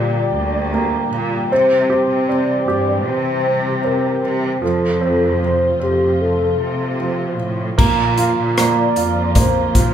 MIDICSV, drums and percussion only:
0, 0, Header, 1, 2, 480
1, 0, Start_track
1, 0, Key_signature, -2, "major"
1, 0, Tempo, 779221
1, 933, Time_signature, 4, 2, 24, 8
1, 3330, Tempo, 790514
1, 6082, End_track
2, 0, Start_track
2, 0, Title_t, "Drums"
2, 4775, Note_on_c, 9, 36, 88
2, 4775, Note_on_c, 9, 49, 62
2, 4835, Note_off_c, 9, 49, 0
2, 4836, Note_off_c, 9, 36, 0
2, 5012, Note_on_c, 9, 42, 62
2, 5073, Note_off_c, 9, 42, 0
2, 5254, Note_on_c, 9, 42, 61
2, 5256, Note_on_c, 9, 37, 82
2, 5315, Note_off_c, 9, 42, 0
2, 5317, Note_off_c, 9, 37, 0
2, 5489, Note_on_c, 9, 42, 60
2, 5550, Note_off_c, 9, 42, 0
2, 5726, Note_on_c, 9, 42, 85
2, 5729, Note_on_c, 9, 36, 80
2, 5787, Note_off_c, 9, 42, 0
2, 5790, Note_off_c, 9, 36, 0
2, 5968, Note_on_c, 9, 36, 72
2, 5968, Note_on_c, 9, 42, 57
2, 6028, Note_off_c, 9, 36, 0
2, 6029, Note_off_c, 9, 42, 0
2, 6082, End_track
0, 0, End_of_file